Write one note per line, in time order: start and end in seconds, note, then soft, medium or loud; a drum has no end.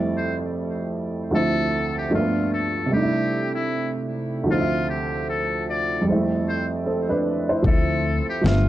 0.00 1.28 F2 medium
0.00 1.29 G3 medium
0.00 1.30 A3 medium
0.00 1.32 C4 soft
0.00 1.33 E4 medium
0.17 0.37 C5 medium
1.31 2.11 D2 medium
1.31 2.09 F3 medium
1.31 2.10 A3 medium
1.35 2.13 C4 medium
1.35 2.14 E4 medium
1.35 1.93 A4 medium
1.98 2.12 G4 medium
2.10 2.90 G2 medium
2.10 2.91 F3 medium
2.10 2.90 A3 medium
2.10 2.20 A#3 soft
2.14 2.92 D4 medium
2.14 2.49 F4 medium
2.14 2.93 E5 medium
2.20 2.95 B3 medium
2.54 2.88 A4 medium
2.86 4.43 C3 medium
2.86 4.45 G3 soft
2.92 4.46 A3 medium
2.92 4.47 D4 medium
2.92 3.51 G4 medium
2.97 3.02 D#4 medium
3.03 4.52 E4 medium
3.55 3.90 E4 medium
4.44 6.01 D2 medium
4.44 6.02 F3 medium
4.49 6.04 A3 soft
4.49 6.05 C4 medium
4.49 4.91 F4 medium
4.54 4.59 D#4 medium
4.61 6.10 E5 medium
4.90 5.25 G4 medium
5.30 5.65 A4 medium
5.70 6.04 D5 medium
6.01 7.59 F2 medium
6.01 7.60 G3 medium
6.07 6.15 G#3 soft
6.07 6.85 C4 medium
6.12 7.63 A3 medium
6.12 6.87 E4 medium
6.49 6.68 C5 medium
6.86 7.08 C4 medium
6.86 7.08 A4 medium
7.09 7.47 D4 medium
7.09 7.47 B4 medium
7.49 7.66 E4 soft
7.49 7.86 C5 medium
7.62 8.19 D2 loud
7.62 8.40 F3 medium
7.62 8.42 A3 medium
7.62 8.44 C4 medium
7.62 kick medium
7.67 8.45 E4 medium
7.67 8.25 A4 medium
8.29 8.43 G4 medium
8.41 8.69 G1 loud
8.41 8.69 F3 medium
8.41 8.69 A3 medium
8.41 8.69 B3 medium
8.46 8.69 F4 medium
8.46 8.69 E5 medium
8.46 snare loud